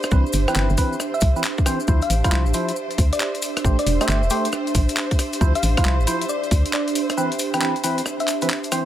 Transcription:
Already playing: D4 G4 C5 E5
0.03 cross-stick, maracas
0.11 C2 E3 C4 B4, kick, maracas
0.26 maracas
0.33 G1, open hi-hat, maracas
0.48 E3 C4 B4 G5, cross-stick, maracas
0.55 G1 E3 C4 B4 G5, clap, maracas
0.70 G1, maracas
0.77 E3 C4 B4, kick, open hi-hat, maracas
0.93 maracas
1.00 cross-stick, maracas
1.14 E5, maracas
1.21 C2, kick, open hi-hat, maracas
1.36 E3 C4 B4, maracas
1.44 clap, open hi-hat, maracas
1.58 kick, maracas
1.66 E3 C4 C5, cross-stick, open hi-hat, maracas
1.80 maracas
1.87 D2 F3 E4 C5, kick, maracas
2.02 F5, closed hi-hat, maracas
2.10 A1, open hi-hat, maracas
2.24 F3 E4 C5 F5, kick, cross-stick, closed hi-hat, maracas
2.32 C2 F3 E4 C5, clap, maracas
2.46 A1, maracas
2.54 F3 E4 C5, open hi-hat, maracas
2.69 closed hi-hat, maracas
2.76 maracas
2.91 closed hi-hat, maracas
2.98 D2, kick, open hi-hat, maracas
3.13 D5, closed hi-hat, maracas
3.20 D5, clap, maracas
3.35 closed hi-hat, maracas
3.42 open hi-hat, maracas
3.57 cross-stick, closed hi-hat, maracas
3.64 A1 A3 G4 C5, kick, maracas
3.79 D5, closed hi-hat, maracas
3.86 E1, open hi-hat, maracas
4.01 A3 G4 C5 E5, cross-stick, closed hi-hat, maracas
4.09 G1 A3 G4 C5, clap, maracas
4.23 E1, maracas
4.30 A3 G4 C5, open hi-hat, maracas
4.45 closed hi-hat, maracas
4.52 cross-stick, maracas
4.67 closed hi-hat, maracas
4.75 A1, kick, open hi-hat, maracas
4.89 closed hi-hat, maracas
4.97 clap, open hi-hat, maracas
5.11 kick, closed hi-hat, maracas
5.19 cross-stick, open hi-hat, maracas
5.33 closed hi-hat, maracas
5.41 D2 F3 E4 C5, kick, maracas
5.55 F5, closed hi-hat, maracas
5.63 A1, open hi-hat, maracas
5.77 F3 E4 C5 F5, kick, cross-stick, closed hi-hat, maracas
5.85 C2 F3 E4 C5, clap, maracas
5.99 A1, maracas
6.07 F3 E4 C5, open hi-hat, maracas
6.21 closed hi-hat, maracas
6.29 D5, maracas
6.44 closed hi-hat, maracas
6.51 D2, kick, open hi-hat, maracas
6.66 closed hi-hat, maracas
6.73 D5, clap, maracas
6.88 closed hi-hat, maracas
6.95 open hi-hat, maracas
7.10 cross-stick, closed hi-hat, maracas
7.18 E3 C4 B4, maracas
7.32 closed hi-hat, maracas
7.39 open hi-hat, maracas
7.54 E3 C4 B4 G5, cross-stick, closed hi-hat, maracas
7.61 E3 C4 B4 G5, clap, maracas
7.76 closed hi-hat, maracas
7.84 E3 C4 B4, open hi-hat, maracas
7.98 closed hi-hat, maracas
8.06 cross-stick, maracas
8.20 E5, closed hi-hat, maracas
8.28 clap, open hi-hat, maracas
8.41 E3 C4 B4, closed hi-hat, maracas
8.50 clap, open hi-hat, maracas
8.64 closed hi-hat, maracas
8.72 E3 C4 C5, cross-stick, open hi-hat, maracas

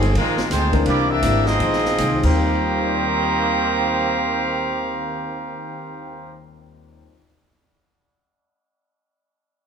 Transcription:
Already playing: G1 C3 D#3 G#3 C4 G4 G#4
0.02 ride
0.15 A#1 A#2 D#3 F3 G#3 A#3 C4 D#4 F4 A#4, kick, ride
0.37 snare
0.50 D2 A#2 D#3 F3 G#3 C4 D#4 F4 C5, kick, snare, hi-hat pedal, ride
0.72 E3 A#3 C4 D4 A#4, kick, ride
0.86 C2 C3 E3 G3 A#3 D4 E4 G4 D5, kick, ride
1.08 G3 A#3 D4 E4 G4 A#4 E5
1.23 G#1 C3 E3 A#3 C4 D4 G4, kick, hi-hat pedal, ride
1.46 F3 G#3 C4 D#4 F4 G#4 D#5, snare
1.60 A#1 A#2 D#3 G#3 C4, kick, ride
1.73 snare
1.85 snare
1.98 C2 A#2 D#3 G#3 C4, kick, hi-hat pedal, ride
2.12 D#2
2.18 D#3
2.22 D#2 D#3 G3 A#3 C4 G4 C5 F5 A#5, kick, crash
2.28 C4 F4
2.37 G4
2.79 A#4
2.87 D5
2.96 F5
3.05 A#5
3.14 D6
3.25 F6
3.37 A#6

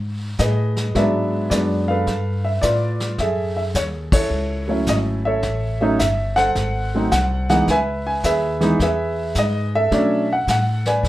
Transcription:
Already playing: G#2
0.38 A2 G#4 B4 D#5, kick, snare, hi-hat pedal
0.77 snare
0.95 G#2 F#3 G#3 B3 D4 B4 E5, brush sweep, kick, snare
1.50 F#2 F#3 G#3 B3 D4 D5, kick, snare, hi-hat pedal
1.88 A4 B4 F5
2.07 G2, brush sweep, kick, snare
2.45 E5
2.61 A2 F4 B4 D5, kick, snare, hi-hat pedal
3.00 snare
3.18 F#2 G#4 A4 E5, brush sweep, kick, snare
3.57 E5
3.74 D#2 C#5, kick, snare, hi-hat pedal
4.12 E4 A4 C#5, kick, crash
4.30 C#2, brush sweep
4.68 F#3 A3 C#4 E4
4.86 G#1 D#5, kick, snare, hi-hat pedal
5.25 A4 C#5 E5
5.43 A1, brush sweep, kick, snare
5.81 F#3 A3 C#4 D#4 E5
5.99 G1 E5, kick, snare, hi-hat pedal
6.36 A4 C5 F#5, snare
6.55 G#1, brush sweep, kick, snare
6.95 F#3 A3 C4 D#4
7.11 C2 F#5, kick, snare, hi-hat pedal
7.49 E3 G#3 B3 D#4 F#5, snare
7.68 C#2 B4 E5 G#5, brush sweep, kick, snare
8.07 G#5
8.24 D#2 G#4 B4 E5, kick, snare, hi-hat pedal
8.60 E3 G#3 B3 D#4, snare
8.79 E2 G#4 B4 E5, brush sweep, kick, snare
9.35 G#2 D#5, kick, snare, hi-hat pedal
9.75 A4 E5
9.91 B2 F#3 A3 C#4 D4, brush sweep, kick, snare
10.33 F#5
10.47 A2 F#5, kick, snare, hi-hat pedal
10.86 B4 D5 G#5, snare
11.03 E2, brush sweep, kick, snare

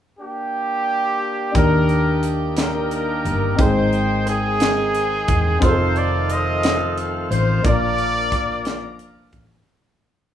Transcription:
0.19 A#3 D4 G4
1.52 D#2 D#3 A#3 D4 G4, kick, closed hi-hat
1.56 G4 A#4 D5
1.89 closed hi-hat
2.23 closed hi-hat
2.57 D4 G4 A#4, snare, closed hi-hat
2.91 closed hi-hat
3.25 G1, closed hi-hat
3.55 G#1 G#2 G#3 C4 D#4 G5, kick, closed hi-hat
3.59 D#4 G#4 C5 G5
3.93 closed hi-hat
4.26 C4 D#4 G#4, closed hi-hat
4.60 snare, closed hi-hat
4.95 closed hi-hat
5.28 E1, kick, closed hi-hat
5.59 F1 F3 A3 C4 D#4 F4 C5, kick, closed hi-hat
5.64 D#4 G#4 A4 C5
5.70 A4
5.96 D5, closed hi-hat
6.30 A4 C5 D#5, closed hi-hat
6.63 snare, closed hi-hat
6.98 closed hi-hat
7.31 A1 C5, closed hi-hat
7.62 A#1 A#2 A#3 D4 F4, kick, closed hi-hat
7.66 F4 A#4 D5
7.99 closed hi-hat
8.32 kick, closed hi-hat
8.65 snare, closed hi-hat
8.99 closed hi-hat
9.33 A1, kick, closed hi-hat

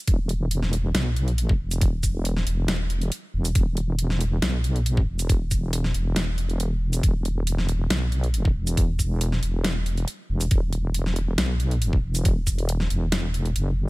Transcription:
0.07 E1, kick, closed hi-hat
0.29 closed hi-hat
0.51 closed hi-hat
0.62 snare
0.73 closed hi-hat
0.94 B1, snare, closed hi-hat
1.16 closed hi-hat
1.28 closed hi-hat
1.38 closed hi-hat
1.49 kick
1.60 E1
1.71 closed hi-hat, shaker
1.81 kick, closed hi-hat
2.03 kick, closed hi-hat, shaker
2.25 closed hi-hat
2.37 snare
2.47 E1, closed hi-hat
2.68 snare, closed hi-hat
2.90 closed hi-hat
3.02 closed hi-hat
3.12 closed hi-hat
3.34 E1
3.45 closed hi-hat, shaker
3.55 E1, kick, closed hi-hat
3.77 closed hi-hat
3.99 closed hi-hat
4.10 snare
4.21 closed hi-hat
4.42 B1, snare, closed hi-hat
4.64 closed hi-hat
4.76 closed hi-hat
4.86 A#1, closed hi-hat
4.97 kick
5.08 E1
5.19 closed hi-hat, shaker
5.29 kick, closed hi-hat
5.51 kick, closed hi-hat, shaker
5.73 closed hi-hat
5.84 snare
5.94 E1, closed hi-hat
6.16 snare, closed hi-hat
6.38 closed hi-hat
6.50 closed hi-hat
6.60 closed hi-hat
6.93 closed hi-hat, shaker
7.03 E1, kick, closed hi-hat
7.25 closed hi-hat
7.47 closed hi-hat
7.58 snare
7.69 closed hi-hat
7.90 B1, snare, closed hi-hat
8.12 closed hi-hat
8.24 closed hi-hat
8.34 closed hi-hat
8.45 kick
8.56 E1
8.67 closed hi-hat, shaker
8.77 kick, closed hi-hat
8.99 kick, closed hi-hat, shaker
9.21 closed hi-hat
9.32 snare
9.43 E1, closed hi-hat
9.64 snare, closed hi-hat
9.86 closed hi-hat
9.97 closed hi-hat
10.08 closed hi-hat
10.29 E1
10.41 closed hi-hat, shaker
10.51 E1, kick, closed hi-hat
10.73 closed hi-hat
10.94 closed hi-hat
11.06 snare
11.16 closed hi-hat
11.38 B1, snare, closed hi-hat
11.60 closed hi-hat
11.71 closed hi-hat
11.82 closed hi-hat
11.93 kick
12.03 E1
12.15 closed hi-hat, shaker
12.25 kick, closed hi-hat
12.47 kick, closed hi-hat, shaker
12.58 closed hi-hat
12.69 closed hi-hat
12.80 snare
12.90 E1, closed hi-hat
13.12 snare, closed hi-hat
13.34 closed hi-hat
13.45 closed hi-hat
13.56 F#1, closed hi-hat

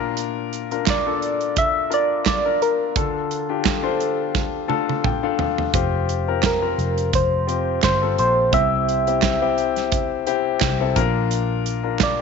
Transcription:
Already playing: A#2 D4 F4 A#4
0.17 closed hi-hat
0.53 closed hi-hat
0.71 D4 F4 A#4, closed hi-hat
0.86 D5, kick, snare, clap, closed hi-hat
1.06 D4 F4 A4
1.22 closed hi-hat
1.41 closed hi-hat
1.56 E5, kick, closed hi-hat
1.90 D4 F4 A#4 D5, closed hi-hat
2.26 D5, kick, snare, clap, closed hi-hat
2.46 D4 F4 A#4
2.62 A#4, closed hi-hat
2.95 D3 D4 F4 A4, kick, closed hi-hat
3.31 closed hi-hat
3.49 D4 F4 G4
3.65 kick, snare, clap, closed hi-hat
3.83 D4 F4 C5
4.00 closed hi-hat
4.35 kick, snare
4.68 D4 F4 A4 A5, high tom
4.89 high tom
5.04 G5, kick, mid tom
5.23 D4 F4 A4 F5
5.39 F5, floor tom
5.58 floor tom
5.73 F1 C4 F4 G4, kick, closed hi-hat
6.09 closed hi-hat
6.28 C4 F4 A#4
6.43 A#4, kick, snare, clap, closed hi-hat
6.62 C4 F4 A#4
6.78 F1, closed hi-hat
6.98 closed hi-hat
7.13 F1 C5, kick, closed hi-hat
7.47 C4 F4 G4, closed hi-hat
7.82 G1 C5, kick, snare, clap, closed hi-hat
8.02 C4 F4 A4
8.18 A#1 C5, closed hi-hat
8.52 C2 C3 C4 E4 G4 E5, kick, closed hi-hat
8.89 closed hi-hat
9.07 C4 E4 G4, closed hi-hat
9.22 kick, snare, clap, closed hi-hat
9.41 C4 E4 G4
9.58 closed hi-hat
9.76 snare, closed hi-hat
9.92 kick, closed hi-hat
10.27 C4 E4 G4, closed hi-hat
10.61 C2, kick, snare, clap, closed hi-hat
10.80 C4 E4 A4
10.96 A#1 A#2 D4 F4 A#4, kick, closed hi-hat
11.31 closed hi-hat
11.66 closed hi-hat
11.83 D4 F4 A#4
11.99 D5, kick, snare, clap, closed hi-hat

